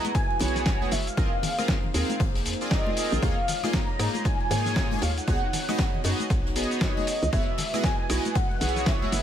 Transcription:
Already playing: analog synth pad G#3 E4 F#4 B4, soft synth lead A#5
0.05 closed hi-hat, high conga, cabasa
0.15 soft synth lead G#5, kick, closed hi-hat, ride, cabasa
0.30 ride
0.39 fm bass B1, analog polysynth B3 E4 F#4 G#4 C#5, soft synth lead G#5, open hi-hat, ride, low conga, cabasa
0.48 closed hi-hat
0.56 snare, closed hi-hat, cabasa
0.66 kick, snare, closed hi-hat, ride, cabasa
0.81 analog polysynth B3 E4 F#4 G#4 C#5, high conga
0.91 fm bass F#1, soft synth lead E5, open hi-hat, ride, cabasa
1.07 soft synth lead F5, closed hi-hat, cabasa
1.17 fm bass A#1, analog synth pad A#3 D#4 G#4 C5, analog polysynth C4 F4 G#4 A#4 D#5, kick, closed hi-hat, ride, cabasa
1.43 open hi-hat, ride, low conga, cabasa
1.58 analog polysynth C4 F4 G#4 A#4 F5, cross-stick, closed hi-hat, high conga, cabasa
1.68 kick, snare, closed hi-hat, ride, cabasa
1.84 low conga
1.94 fm bass D#2, analog polysynth C4 F4 G#4 A#4 F5, open hi-hat, ride, cabasa
2.09 closed hi-hat, high conga, cabasa
2.20 fm bass G#1, kick, closed hi-hat, ride, cabasa
2.35 snare, open hi-hat
2.45 fm bass F2, open hi-hat, ride, cabasa
2.53 closed hi-hat
2.61 analog polysynth C4 F4 G#4 A#4 D5, closed hi-hat, cabasa
2.71 soft synth lead D#5, kick, snare, closed hi-hat, ride, cabasa
2.87 high conga
2.96 analog polysynth C4 F4 G#4 A#4 G5, open hi-hat, ride, cabasa
3.12 fm bass A#1, closed hi-hat, low conga, cabasa
3.22 fm bass D#2, analog synth pad G#3 D#4 F4 C#5, analog polysynth A#3 D#4 F4 G#4 C#5, soft synth lead F5, kick, closed hi-hat, ride, cabasa
3.48 open hi-hat, ride, low conga, cabasa
3.63 analog polysynth A#3 D#4 F4 G#4 D#5, cross-stick, snare, closed hi-hat, high conga, cabasa
3.73 soft synth lead A#5, kick, snare, closed hi-hat, ride, cabasa
3.99 fm bass G#2, analog polysynth A#3 D#4 F4 G#4 D#5, cross-stick, open hi-hat, ride, cabasa
4.14 closed hi-hat, high conga, cabasa
4.25 soft synth lead G#5, kick, closed hi-hat, ride, cabasa
4.40 ride
4.51 fm bass G#2, analog polysynth A#3 D#4 F4 G#4 C#5, soft synth lead G#5, open hi-hat, ride, low conga, cabasa
4.59 closed hi-hat
4.66 snare, closed hi-hat, cabasa
4.76 kick, snare, closed hi-hat, ride, cabasa
4.91 analog polysynth A#3 D#4 F4 G#4 C#5, high conga
5.01 fm bass D#2, soft synth lead F5, open hi-hat, ride, cabasa
5.17 soft synth lead F#5, closed hi-hat, cabasa
5.27 fm bass C#2, analog polysynth B3 D#4 F#4 G#4 C#5, analog synth pad B3 F#4 C#5, kick, closed hi-hat, ride, cabasa
5.53 open hi-hat, ride, low conga, cabasa
5.69 analog polysynth B3 D#4 F#4 G#4 D#5, cross-stick, closed hi-hat, high conga, cabasa
5.79 kick, snare, closed hi-hat, ride, cabasa
5.94 low conga
6.04 fm bass F#2, analog polysynth B3 D#4 F#4 G#4 D#5, open hi-hat, ride, cabasa
6.20 closed hi-hat, high conga, cabasa
6.30 fm bass B1, kick, closed hi-hat, ride, cabasa
6.46 snare
6.56 fm bass G#1, analog polysynth B3 D#4 F#4 G#4 C#5, open hi-hat, ride, cabasa
6.64 closed hi-hat
6.71 closed hi-hat, cabasa
6.81 soft synth lead D#5, kick, snare, closed hi-hat, ride, cabasa
6.97 analog polysynth B3 D#4 F#4 G#4 C#5, high conga
7.07 open hi-hat, ride, cabasa
7.22 fm bass C#2, closed hi-hat, low conga, cabasa
7.33 fm bass F#1, analog synth pad G#3 E4 B4, analog polysynth B3 E4 F#4 G#4 C#5, soft synth lead E5, kick, closed hi-hat, ride, cabasa
7.58 open hi-hat, ride, low conga, cabasa
7.74 analog polysynth B3 E4 F#4 G#4 D#5, cross-stick, snare, closed hi-hat, high conga, cabasa
7.84 soft synth lead G#5, kick, snare, closed hi-hat, ride, cabasa
8.09 fm bass B1, analog polysynth B3 E4 F#4 G#4 D#5, cross-stick, open hi-hat, ride, cabasa
8.25 closed hi-hat, high conga, cabasa
8.35 soft synth lead F#5, kick, closed hi-hat, ride, cabasa
8.51 ride
8.61 fm bass B1, analog polysynth B3 E4 F#4 G#4 C#5, open hi-hat, ride, low conga, cabasa
8.69 closed hi-hat
8.76 snare, closed hi-hat, cabasa
8.86 soft synth lead E5, kick, snare, closed hi-hat, ride, cabasa
9.02 analog polysynth B3 E4 F#4 G#4 C#5, high conga
9.12 fm bass F#1, open hi-hat, ride, cabasa

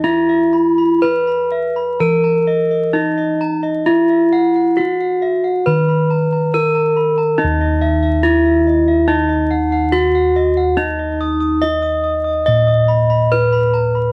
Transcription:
Already playing: kettle gongs E3
0.04 bronze metallophone E4 E5, kettle gongs E4
0.29 bronze metallophone E5
0.53 bronze metallophone B5
0.78 bronze metallophone B5
1.02 kettle gongs E4, bronze metallophone B4 B5
1.27 bronze metallophone B5
1.52 bronze metallophone E5
1.76 bronze metallophone B5
1.99 kettle gongs E3, bronze metallophone A#4 A#5
2.24 bronze metallophone A#5
2.47 bronze metallophone D#5
2.71 bronze metallophone D#5
2.93 bronze metallophone D#4 D#5, kettle gongs E4
3.18 bronze metallophone D#5
3.41 bronze metallophone A#5
3.63 bronze metallophone D#5
3.86 bronze metallophone E4 E5, kettle gongs E4
4.10 bronze metallophone E5
4.33 bronze metallophone F#5
4.56 bronze metallophone F#5
4.77 kettle gongs E4, bronze metallophone F#4 F#5
5.00 bronze metallophone F#5
5.22 bronze metallophone E5
5.44 bronze metallophone F#5
5.66 kettle gongs D#3, bronze metallophone B4 B5
5.89 bronze metallophone B5
6.10 bronze metallophone A#5
6.33 bronze metallophone A#5
6.54 kettle gongs E4, bronze metallophone A#4 A#5
6.75 bronze metallophone A#5
6.97 bronze metallophone B5
7.18 bronze metallophone A#5
7.38 bronze metallophone D#4 D#5, kettle gongs D#4
7.44 kettle gongs D#2
7.61 bronze metallophone D#5
7.81 bronze metallophone E5
8.03 bronze metallophone E5
8.23 bronze metallophone E4 E5, kettle gongs E4
8.45 bronze metallophone E5
8.67 bronze metallophone D#5
8.88 bronze metallophone E5
9.08 bronze metallophone D#4 D#5
9.29 bronze metallophone D#5
9.50 bronze metallophone F#5
9.72 bronze metallophone F#5
9.92 kettle gongs E4, bronze metallophone F#4 F#5
10.15 bronze metallophone F#5
10.36 bronze metallophone D#5
10.57 bronze metallophone F#5
10.77 bronze metallophone D#4 D#5, kettle gongs D#4
10.99 bronze metallophone D#5
11.21 bronze metallophone D#6
11.40 bronze metallophone D#6
11.62 kettle gongs E4, bronze metallophone D#5 D#6
11.82 bronze metallophone D#6
12.04 bronze metallophone D#6
12.24 bronze metallophone D#6
12.46 kettle gongs A#2, bronze metallophone D#5 D#6
12.67 bronze metallophone D#6
12.88 bronze metallophone B5
13.10 bronze metallophone B5
13.32 kettle gongs E4, bronze metallophone B4
13.52 bronze metallophone B5
13.74 bronze metallophone A#5
13.95 bronze metallophone B5

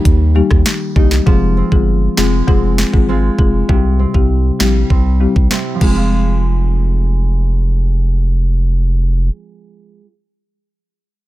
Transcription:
Already playing: nylon-string guitar D#3 G3 A#3 D#4
0.05 sub bass D#2, kick, closed hi-hat
0.35 marimba G3 A#3 D#4 G4
0.51 sub bass D#2, kick, cross-stick
0.66 snare, closed hi-hat
0.96 sub bass C2, marimba G3 A#3 D#4 G4, nylon-string guitar D#4, kick
1.11 snare
1.26 sub bass F1, nylon-string guitar F3, marimba G#3 C4 F4 G#4, kick
1.57 nylon-string guitar C4
1.72 sub bass G1, marimba G#3 C4 F4 G#4, kick
2.17 sub bass F1, marimba G#3 C4 F4 G#4, nylon-string guitar G#3, snare
2.48 sub bass F1, marimba G#3 C4 F4 G#4, nylon-string guitar C4, kick
2.78 snare
2.93 sub bass G#1, marimba G#3 C4 F4 G#4, kick
3.09 nylon-string guitar G#3 C4 F4
3.38 sub bass F1, marimba G#3 C4 F4 G#4, kick
3.69 sub bass C2, nylon-string guitar C3, marimba G3 C4 E4 G4, kick
3.99 nylon-string guitar C4
4.14 sub bass C2, marimba G3 C4 E4 G4, kick
4.60 sub bass A#1, marimba G3 C4 E4 G4, nylon-string guitar G3, snare
4.90 sub bass C2, nylon-string guitar C4, kick
5.20 marimba G3 C4 E4 G4
5.36 sub bass C2, kick
5.51 nylon-string guitar G3 C4 E4, snare
5.75 nylon-string guitar F3
5.81 sub bass F1, marimba G#3 C4 F4 G#4, nylon-string guitar G#3, kick, crash
5.90 nylon-string guitar C4
5.96 nylon-string guitar F4

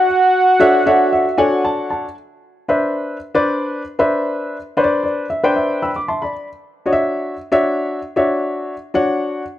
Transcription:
Already playing: analog synth lead F#5
0.60 grand piano D4 F#4 A4 C#5 E5
0.86 grand piano D4 F#4 A4 C#5 E5 F#5
1.13 grand piano E5
1.38 grand piano D4 F#4 A4 C#5 F#5 G#5
1.65 grand piano A5
1.90 grand piano A5
2.68 grand piano D4 B4 C5 E5
3.35 grand piano D4 B4 C5 D5
3.99 grand piano D4 B4 C5 E5
4.77 grand piano D4 B4 C5 C#5
4.84 grand piano D5
5.04 grand piano D5
5.30 grand piano E5
5.43 grand piano D4 B4 C5 G5
5.56 grand piano E5
5.82 grand piano G5 B5 E6
5.96 grand piano D6
6.08 grand piano E5 A5 C6
6.22 grand piano D5 B5
6.86 grand piano D4 F#4 C#5 D#5
6.93 grand piano E5
7.52 grand piano D4 F#4 C#5 E5
8.16 grand piano D4 F#4 C#5 E5
8.94 grand piano D4 F#4 C#5 F#5

